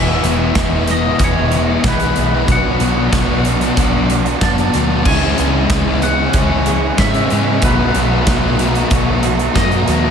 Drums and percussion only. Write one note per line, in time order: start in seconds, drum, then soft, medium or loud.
0.24 closed hi-hat medium
0.55 kick loud
0.55 snare loud
0.55 closed hi-hat loud
0.87 closed hi-hat medium
1.19 kick loud
1.19 closed hi-hat loud
1.52 closed hi-hat medium
1.84 kick loud
1.84 snare loud
1.84 closed hi-hat loud
2.00 closed hi-hat medium
2.16 closed hi-hat medium
2.48 kick loud
2.48 closed hi-hat loud
2.80 closed hi-hat medium
3.13 kick loud
3.13 snare loud
3.13 closed hi-hat loud
3.45 closed hi-hat medium
3.61 closed hi-hat medium
3.77 kick loud
3.77 closed hi-hat loud
4.10 closed hi-hat medium
4.26 closed hi-hat soft
4.41 kick loud
4.41 snare loud
4.41 closed hi-hat loud
4.58 closed hi-hat medium
4.74 snare soft
4.74 closed hi-hat medium
5.05 kick loud
5.05 crash loud
5.38 closed hi-hat medium
5.70 kick loud
5.70 snare loud
5.70 closed hi-hat loud
6.02 closed hi-hat medium
6.33 kick loud
6.33 closed hi-hat loud
6.66 closed hi-hat medium
6.98 kick loud
6.98 snare loud
6.98 closed hi-hat loud
7.14 closed hi-hat medium
7.30 closed hi-hat medium
7.62 kick loud
7.62 closed hi-hat loud
7.95 closed hi-hat medium
8.27 kick loud
8.27 snare loud
8.27 closed hi-hat loud
8.59 closed hi-hat medium
8.75 closed hi-hat medium
8.91 kick loud
8.91 closed hi-hat loud
9.23 closed hi-hat medium
9.39 closed hi-hat medium
9.55 kick loud
9.55 snare loud
9.55 closed hi-hat loud
9.71 closed hi-hat medium
9.88 snare soft
9.88 closed hi-hat medium